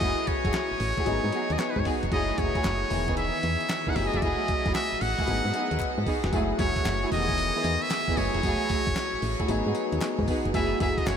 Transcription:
Already playing: F#3 A3 E4 G#4 D#5
0.01 F#1 A3 E4 F#4 G#4, kick, closed hi-hat
0.27 C#5, kick, closed hi-hat
0.44 F#1 A3 E4 F#4 G#4, kick, closed hi-hat
0.54 snare, clap, closed hi-hat
0.71 A1
0.80 A1, open hi-hat
0.97 A3 E4 F#4 G#4, kick, closed hi-hat
1.05 G#1 F#3 B3 D#4 G#4, closed hi-hat
1.24 G#2
1.32 B3 D#4 F#4 G#4, closed hi-hat
1.50 D#2 D#5, closed hi-hat
1.59 C#5, snare, clap, closed hi-hat
1.71 B4
1.76 G#2 C#5, kick
1.85 B3 D#4 F#4 G#4, kick, snare, open hi-hat
2.03 F1, closed hi-hat
2.11 F#1 F#3 A3 E4 F#4 G#4 D#5, kick, closed hi-hat
2.38 F#1 C#5, kick, closed hi-hat
2.55 A3 E4 F#4 G#4, kick, closed hi-hat
2.64 F#1, snare, clap, closed hi-hat
2.90 E1 D#3 E3 B3 G#4, open hi-hat
3.08 B3 D#4 E4 G#4, kick, closed hi-hat
3.17 E5, closed hi-hat
3.43 E2, closed hi-hat
3.61 closed hi-hat
3.69 snare, clap, closed hi-hat
3.87 B3 D#4 E4 G#4 F#5, kick
3.95 F#1 F#3 A3 E4 G4 E5, snare, open hi-hat
4.04 G#4 D#5
4.13 F1 A3 E4 F#4 G#4 E5, closed hi-hat
4.18 D5
4.22 F#1 A3 E4 F#4 G#4 D#5, kick, closed hi-hat
4.48 kick, closed hi-hat
4.66 F#1 A3 E4 F#4 G#4, kick, closed hi-hat
4.75 E5, snare, clap, closed hi-hat
4.93 A1
5.01 A1 F#5, open hi-hat
5.18 A3 E4 F#4 G#4, kick, closed hi-hat
5.27 G#1 F#3 B3 D#4 G#4, closed hi-hat
5.45 G#2
5.54 B3 D#4 F#4 G#4, closed hi-hat
5.71 D#2, closed hi-hat
5.80 kick, clap, closed hi-hat
5.98 G#2
6.06 B3 D#4 F#4 G#4, kick, open hi-hat
6.24 F1, snare, closed hi-hat
6.32 F#1 F#3 G#3 A3 E4 F#4 G#4, kick, closed hi-hat, tambourine
6.39 A3
6.59 F#1 A3 E4 F#4 G#4 C#5, kick, closed hi-hat, tambourine
6.76 kick, closed hi-hat
6.85 F#1, snare, clap, closed hi-hat, tambourine
7.03 A3 E4 F#4 G#4
7.11 E1 D#3 E3 B3 G4 D#5, open hi-hat
7.20 G#4
7.29 kick, closed hi-hat
7.38 closed hi-hat, tambourine
7.55 B3 D#4 E4 G#4
7.64 E2, closed hi-hat, tambourine
7.82 E5, closed hi-hat
7.91 snare, clap, closed hi-hat, tambourine
8.08 B3 D#4 E4 G#4, kick
8.16 F#1 F#3 A3 E4 G#4 C#5, open hi-hat, tambourine
8.34 F1 A3 E4 F#4 G#4, closed hi-hat
8.43 F#1 A3 E4 F#4 G#4, kick, closed hi-hat, tambourine
8.69 kick, closed hi-hat, tambourine
8.87 F#1, kick, closed hi-hat
8.96 snare, clap, closed hi-hat, tambourine
9.14 A1
9.22 A1, open hi-hat
9.40 A3 E4 F#4 G#4, kick, closed hi-hat
9.48 G#1 F#3 B3 D#4 G#4, closed hi-hat, tambourine
9.66 G#2 B3 D#4 F#4 G#4
9.75 closed hi-hat, tambourine
9.92 D#2, closed hi-hat
10.01 snare, clap, closed hi-hat, tambourine
10.19 G#2, kick
10.28 B3 D#4 F#4 G#4, kick, open hi-hat, tambourine
10.45 F1, closed hi-hat
10.54 F#1 F#3 A3 E4 F#4 G#4 E5, kick, closed hi-hat, tambourine
10.80 F#1 A3 E4 F#4 G#4 E5, kick, closed hi-hat, tambourine
10.98 D#5, kick, closed hi-hat
11.07 F#1 C#5, snare, clap, closed hi-hat, tambourine

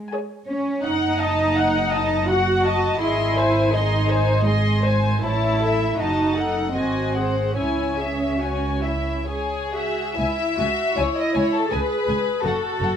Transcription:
Already playing: G#3
0.13 G#4 C#5 G#5
0.49 C#4
0.84 F#1 D#4 F#5
1.20 D#5 A5
1.56 F#5
1.92 D#5 A5
2.26 F#4 F#5
2.30 F#5
2.63 D#5 A5
2.67 D#5
3.00 G#1 E4 G#4 D#5 C6
3.36 C5 G#5
3.72 D#4 G#4 D#5 C6
4.09 C5 G#5
4.44 G#3 G#4 D#5 C6
4.83 C5 G#5
5.23 A1 E4 C#5 A5
5.61 A4 E5
5.98 F#1 D#4 F#4 D#5 A5
6.37 A4 F#5
6.74 G#1 C4 F#4 D#5 G#5
7.15 G#4 C5 F#5
7.56 C#2 C#4 E4 C#5 G#5
7.98 G#4 E5
8.40 F#4 C#5 G#5
8.83 E4 E5
9.27 G#4 C#5 G#5
9.74 F#4 E5
10.17 C#2 E4 E5 G#5
10.58 C#2 F#4 G#5
10.96 C#2 E4 C#5 G#5
11.19 D#5
11.35 C#2 C#5 G#5
11.54 A4
11.71 C#2 G#4 B4 G#5
12.08 C#2 G#5
12.43 F#1 F#2 F#4 A4 F#5
12.80 F#1 F#2 F#5

